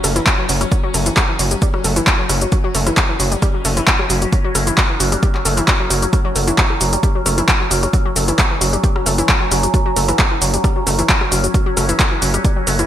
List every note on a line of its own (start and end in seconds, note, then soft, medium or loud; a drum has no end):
0.00 0.20 F#1 medium
0.00 6.12 F#3 medium
0.00 0.07 A3 loud
0.00 6.12 C#4 medium
0.00 cross-stick medium
0.00 open hi-hat loud
0.00 shaker medium
0.16 0.20 E3 loud
0.16 closed hi-hat medium
0.16 shaker soft
0.26 0.31 F#4 medium
0.26 kick loud
0.26 clap loud
0.26 closed hi-hat medium
0.26 shaker soft
0.38 0.45 F#3 medium
0.49 0.65 F#1 loud
0.49 0.56 F#3 medium
0.49 open hi-hat loud
0.49 shaker medium
0.61 0.68 F#3 medium
0.61 cross-stick medium
0.61 closed hi-hat medium
0.61 shaker soft
0.71 0.75 F#3 medium
0.71 kick loud
0.71 closed hi-hat medium
0.71 shaker soft
0.83 0.88 F#3 loud
0.94 1.10 F#1 loud
0.94 0.97 A3 loud
0.94 open hi-hat loud
0.94 shaker medium
1.06 1.10 E3 loud
1.06 closed hi-hat medium
1.06 shaker soft
1.17 1.22 F#4 medium
1.17 kick loud
1.17 cross-stick medium
1.17 clap loud
1.17 closed hi-hat medium
1.17 shaker soft
1.29 1.31 E3 medium
1.39 1.55 F#1 loud
1.39 1.47 F#3 medium
1.39 open hi-hat loud
1.39 shaker medium
1.51 1.54 G3 medium
1.51 closed hi-hat medium
1.51 shaker soft
1.62 1.67 G3 medium
1.62 kick loud
1.62 closed hi-hat medium
1.62 shaker soft
1.74 1.78 F#3 medium
1.74 cross-stick medium
1.84 2.00 F#1 medium
1.84 1.87 A3 loud
1.84 open hi-hat loud
1.84 shaker medium
1.96 2.01 E3 loud
1.96 closed hi-hat medium
1.96 shaker soft
2.07 2.12 F#4 medium
2.07 kick loud
2.07 clap loud
2.07 closed hi-hat medium
2.07 shaker soft
2.19 2.25 F#3 medium
2.29 2.45 F#1 loud
2.29 2.37 F#3 medium
2.29 cross-stick medium
2.29 open hi-hat loud
2.29 shaker medium
2.41 2.48 F#3 medium
2.41 closed hi-hat medium
2.41 shaker soft
2.52 2.55 F#3 medium
2.52 kick loud
2.52 closed hi-hat medium
2.52 shaker soft
2.64 2.68 F#3 loud
2.75 2.90 F#1 loud
2.75 2.78 A3 loud
2.75 open hi-hat loud
2.75 shaker medium
2.87 2.91 E3 loud
2.87 cross-stick medium
2.87 closed hi-hat medium
2.87 shaker soft
2.97 3.02 F#4 medium
2.97 kick loud
2.97 clap loud
2.97 closed hi-hat medium
2.97 shaker soft
3.09 3.12 E3 medium
3.20 3.35 F#1 loud
3.20 3.27 F#3 medium
3.20 open hi-hat loud
3.20 shaker medium
3.32 3.34 G3 medium
3.32 closed hi-hat medium
3.32 shaker soft
3.42 3.47 G3 medium
3.42 kick loud
3.42 cross-stick medium
3.42 closed hi-hat medium
3.42 shaker soft
3.54 3.59 F#3 medium
3.65 3.81 F#1 medium
3.65 3.68 A3 loud
3.65 open hi-hat loud
3.65 shaker medium
3.77 3.81 E3 loud
3.77 closed hi-hat medium
3.77 shaker soft
3.87 3.92 F#4 medium
3.87 kick loud
3.87 clap loud
3.87 closed hi-hat medium
3.87 shaker soft
3.99 4.06 F#3 medium
3.99 cross-stick medium
4.10 4.26 F#1 loud
4.10 4.17 F#3 medium
4.10 open hi-hat loud
4.10 shaker medium
4.22 4.28 F#3 medium
4.22 closed hi-hat medium
4.22 shaker soft
4.32 4.35 F#3 medium
4.32 kick loud
4.32 closed hi-hat medium
4.32 shaker soft
4.44 4.49 F#3 loud
4.55 4.71 F#1 loud
4.55 4.58 A3 loud
4.55 cross-stick medium
4.55 open hi-hat loud
4.55 shaker medium
4.67 4.71 E3 loud
4.67 closed hi-hat medium
4.67 shaker soft
4.77 4.83 F#4 medium
4.77 kick loud
4.77 clap loud
4.77 closed hi-hat medium
4.77 shaker soft
4.90 4.92 E3 medium
5.00 5.16 F#1 loud
5.00 5.08 F#3 medium
5.00 open hi-hat loud
5.00 shaker medium
5.12 5.15 G3 medium
5.12 cross-stick medium
5.12 closed hi-hat medium
5.12 shaker soft
5.23 5.28 G3 medium
5.23 kick loud
5.23 closed hi-hat medium
5.23 shaker soft
5.35 5.39 F#3 medium
5.35 clap soft
5.45 5.61 F#1 loud
5.45 5.48 A3 loud
5.45 open hi-hat loud
5.45 shaker medium
5.57 5.62 E3 loud
5.57 closed hi-hat medium
5.57 shaker soft
5.68 5.73 F#4 medium
5.68 kick loud
5.68 cross-stick medium
5.68 clap loud
5.68 closed hi-hat medium
5.68 shaker soft
5.80 5.86 F#3 medium
5.90 6.06 F#1 medium
5.90 5.98 F#3 medium
5.90 open hi-hat loud
5.90 shaker medium
6.02 6.09 F#3 medium
6.02 closed hi-hat medium
6.02 shaker soft
6.13 12.87 F#3 medium
6.13 6.16 F#3 medium
6.13 12.87 C#4 medium
6.13 kick loud
6.13 cross-stick medium
6.13 closed hi-hat medium
6.13 shaker soft
6.25 6.29 F#3 loud
6.35 6.51 F#1 loud
6.35 6.39 A3 loud
6.35 open hi-hat loud
6.35 shaker medium
6.47 6.52 E3 loud
6.47 closed hi-hat medium
6.47 shaker soft
6.58 6.63 F#4 medium
6.58 kick loud
6.58 clap loud
6.58 closed hi-hat medium
6.58 shaker soft
6.70 6.73 E3 medium
6.70 cross-stick medium
6.81 6.96 F#1 loud
6.81 6.88 F#3 medium
6.81 open hi-hat loud
6.81 shaker medium
6.93 6.95 G3 medium
6.93 closed hi-hat medium
6.93 shaker soft
7.03 7.08 G3 medium
7.03 kick loud
7.03 closed hi-hat medium
7.03 shaker soft
7.15 7.20 F#3 medium
7.26 7.42 F#1 medium
7.26 7.29 A3 loud
7.26 cross-stick medium
7.26 open hi-hat loud
7.26 shaker medium
7.38 7.42 E3 loud
7.38 closed hi-hat medium
7.38 shaker soft
7.48 7.53 F#4 medium
7.48 kick loud
7.48 clap loud
7.48 closed hi-hat medium
7.48 shaker soft
7.60 7.67 F#3 medium
7.71 7.87 F#1 loud
7.71 7.78 F#3 medium
7.71 open hi-hat loud
7.71 shaker medium
7.83 7.89 F#3 medium
7.83 cross-stick medium
7.83 closed hi-hat medium
7.83 shaker soft
7.93 7.96 F#3 medium
7.93 kick loud
7.93 closed hi-hat medium
7.93 shaker soft
8.05 8.10 F#3 loud
8.16 8.32 F#1 loud
8.16 8.19 A3 loud
8.16 open hi-hat loud
8.16 shaker medium
8.28 8.32 E3 loud
8.28 closed hi-hat medium
8.28 shaker soft
8.38 8.44 F#4 medium
8.38 kick loud
8.38 cross-stick medium
8.38 clap loud
8.38 closed hi-hat medium
8.38 shaker soft
8.51 8.53 E3 medium
8.61 8.77 F#1 loud
8.61 8.68 F#3 medium
8.61 open hi-hat loud
8.61 shaker medium
8.73 8.76 G3 medium
8.73 closed hi-hat medium
8.73 shaker soft
8.84 8.89 G3 medium
8.84 kick loud
8.84 closed hi-hat medium
8.84 shaker soft
8.96 9.00 F#3 medium
8.96 cross-stick medium
9.06 9.22 F#1 medium
9.06 9.09 A3 loud
9.06 open hi-hat loud
9.06 shaker medium
9.18 9.23 E3 loud
9.18 closed hi-hat medium
9.18 shaker soft
9.29 9.34 F#4 medium
9.29 kick loud
9.29 clap loud
9.29 closed hi-hat medium
9.29 shaker soft
9.41 9.47 F#3 medium
9.51 9.67 F#1 loud
9.51 9.59 F#3 medium
9.51 cross-stick medium
9.51 open hi-hat loud
9.51 shaker medium
9.63 9.70 F#3 medium
9.63 closed hi-hat medium
9.63 shaker soft
9.74 9.77 F#3 medium
9.74 kick loud
9.74 closed hi-hat medium
9.74 shaker soft
9.86 9.90 F#3 loud
9.96 10.12 F#1 loud
9.96 9.99 A3 loud
9.96 open hi-hat loud
9.96 shaker medium
10.08 10.13 E3 loud
10.08 cross-stick medium
10.08 closed hi-hat medium
10.08 shaker soft
10.19 10.24 F#4 medium
10.19 kick loud
10.19 clap loud
10.19 closed hi-hat medium
10.19 shaker soft
10.31 10.34 E3 medium
10.42 10.57 F#1 loud
10.42 10.49 F#3 medium
10.42 open hi-hat loud
10.42 shaker medium
10.53 10.56 G3 medium
10.53 closed hi-hat medium
10.53 shaker soft
10.64 10.69 G3 medium
10.64 kick loud
10.64 cross-stick medium
10.64 closed hi-hat medium
10.64 shaker soft
10.76 10.80 F#3 medium
10.87 11.02 F#1 medium
10.87 10.90 A3 loud
10.87 open hi-hat loud
10.87 shaker medium
10.99 11.03 E3 loud
10.99 closed hi-hat medium
10.99 shaker soft
11.09 11.14 F#4 medium
11.09 kick loud
11.09 clap loud
11.09 closed hi-hat medium
11.09 shaker soft
11.21 11.28 F#3 medium
11.21 cross-stick medium
11.32 11.48 F#1 loud
11.32 11.39 F#3 medium
11.32 open hi-hat loud
11.32 shaker medium
11.44 11.50 F#3 medium
11.44 closed hi-hat medium
11.44 shaker soft
11.54 11.57 F#3 medium
11.54 kick loud
11.54 closed hi-hat medium
11.54 shaker soft
11.66 11.71 F#3 loud
11.77 11.93 F#1 loud
11.77 11.80 A3 loud
11.77 cross-stick medium
11.77 open hi-hat loud
11.77 shaker medium
11.89 11.93 E3 loud
11.89 closed hi-hat medium
11.89 shaker soft
11.99 12.04 F#4 medium
11.99 kick loud
11.99 clap loud
11.99 closed hi-hat medium
11.99 shaker soft
12.11 12.14 E3 medium
12.22 12.38 F#1 loud
12.22 12.29 F#3 medium
12.22 open hi-hat loud
12.22 shaker medium
12.34 12.37 G3 medium
12.34 cross-stick medium
12.34 closed hi-hat medium
12.34 shaker soft
12.44 12.49 G3 medium
12.44 kick loud
12.44 closed hi-hat medium
12.44 shaker soft
12.56 12.61 F#3 medium
12.67 12.83 F#1 medium
12.67 12.70 A3 loud
12.67 open hi-hat loud
12.67 shaker medium
12.79 12.83 E3 loud
12.79 closed hi-hat medium
12.79 shaker soft